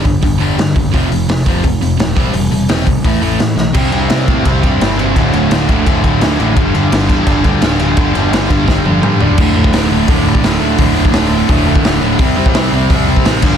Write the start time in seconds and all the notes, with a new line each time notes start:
0.05 G1 G2 D3, kick, open hi-hat
0.22 G1 G2 D3, kick, open hi-hat
0.40 G1 G2 D3 G3, open hi-hat
0.58 G2 D3, snare, open hi-hat
0.76 F#1 G2 D3, kick, open hi-hat
0.94 F1 F2 C3 F3, kick, open hi-hat
1.11 F1 F2 C3, open hi-hat
1.28 F1 F2 C3, snare, open hi-hat
1.46 F1 F2 C3 F3, kick, open hi-hat
1.64 F1 F2 C3, kick, open hi-hat
1.81 F1 F2 C3, open hi-hat
1.99 D#1 F2 C3, snare, open hi-hat
2.16 E1 C3 G3 C4, kick, open hi-hat
2.34 E1 C3 G3, open hi-hat
2.51 E1 C3 G3, open hi-hat
2.69 E1 C3 G3 C4, snare, open hi-hat
2.86 E1 C3 G3, kick, open hi-hat
3.04 A1 A2 E3 A3, kick, open hi-hat
3.21 A1 A2 E3 A3, open hi-hat
3.39 A2 E3, snare, open hi-hat
3.57 B1 A2 E3, snare
3.73 C2 C3 G3 C4, kick, crash
3.92 C2 C3 G3 C4, crash
4.10 C2 C3 G3 C4, snare, crash
4.28 A2 C3 G3 C4, kick, crash
4.45 C2 C3 G3 C4, kick, crash
4.63 G2 C3 G3 C4, kick, crash
4.80 G1 C3 G3 C4, snare, crash
4.98 C3 G3 C4, crash
5.16 D1 D2 A2 D3, kick, crash
5.33 D1 D2 A2 D3, crash
5.50 D1 D2 A2 D3, snare, crash
5.69 D1 D2 A2 D3, kick, crash
5.86 D1 D2 A2 D3, kick, crash
6.04 D1 D2 A2 D3, kick, crash
6.20 D2 A2 D3, snare, crash
6.39 A1 D2 A2 D3, crash
6.56 G1 G2 D3 G3, kick, crash
6.74 G1 G2 D3 G3, crash
6.92 G1 G2 D3 G3, snare, crash
7.09 E2 G2 D3 G3, kick, crash
7.27 G1 G2 D3 G3, kick, crash
7.44 D2 G2 D3 G3, kick, crash
7.61 D1 G2 D3 G3, snare, crash
7.79 G2 D3 G3, crash
7.97 G1 G2 D3 G3, kick, crash
8.15 G1 G2 D3 G3, crash
8.32 G1 G2 D3 G3, snare, crash
8.50 G1 G2 D3 G3, kick, crash
8.67 G1 G2 D3 G3, kick, snare
8.85 G1 G2 D3 G3, high tom
9.03 G2 D3 G3, mid tom
9.20 D1 G2 D3 G3, floor tom
9.38 D1 D2 A2 D3, kick, crash
9.56 D1 D2 A2 D3
9.64 kick
9.73 D1 D2 A2 D3, snare, open hi-hat
9.91 D1 D2 A2 D3
10.08 D1 D2 A2 D3, kick, open hi-hat
10.27 D2 A2 D3
10.35 kick
10.43 D1 D2 A2 D3, snare, open hi-hat
10.61 D1 D2 A2 D3
10.78 D1 D2 A2 D3, kick, open hi-hat
10.97 D2 A2 D3
11.05 kick
11.13 D1 D2 A2 D3, snare, open hi-hat
11.29 D2
11.33 D2 A2 D3
11.49 D1 D2 A2 D3, kick, open hi-hat
11.67 D2 A2 D3
11.76 kick
11.83 D1 D2 A2 D3, snare, open hi-hat
11.87 D3
12.01 D1 D2 A2 D3
12.19 C2 C3 G3 C4, kick, open hi-hat
12.37 C2 C3 G3 C4
12.46 kick
12.54 C2 C3 G3 C4, snare, open hi-hat
12.72 C2 C3 G3 C4
12.90 C2 C3 G3 C4, kick, open hi-hat
13.08 C3 G3 C4
13.17 kick
13.25 A1 C3 G3 C4, snare, open hi-hat
13.42 G1 G2 D3 G3, kick, crash